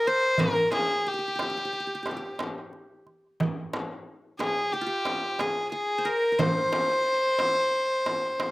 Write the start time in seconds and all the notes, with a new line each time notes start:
Already playing: F4 G#4 A#4
0.05 C5, darbuka ka
0.38 A#4, darbuka dum, frame drum
0.72 G#4, darbuka tek, frame drum
1.06 G4
1.14 G4
1.19 G4
1.28 G4
1.35 G4, darbuka tek
1.40 G4, frame drum
1.50 G4
1.57 G4
1.65 G4
1.73 G4, darbuka ka
1.80 G4
1.87 G4
1.95 G4
2.03 G4, darbuka tek
2.07 frame drum
2.11 G4
2.17 G4
2.39 darbuka tek, frame drum
2.73 darbuka ka
3.07 darbuka ka
3.40 frame drum, darbuka dum
3.73 darbuka tek, frame drum
4.39 G#4, darbuka tek, frame drum
4.72 G4, darbuka ka
4.81 F4
4.87 G4
5.05 darbuka tek, frame drum
5.39 G#4, darbuka tek, frame drum
5.72 G#4, darbuka ka
5.98 C5
6.05 A#4, darbuka ka
6.32 A#4
6.39 C5, darbuka dum, frame drum
6.72 darbuka tek, frame drum
7.05 darbuka ka
7.39 darbuka tek, frame drum
7.56 darbuka ka
7.74 darbuka ka
8.06 darbuka tek, frame drum
8.40 darbuka tek, frame drum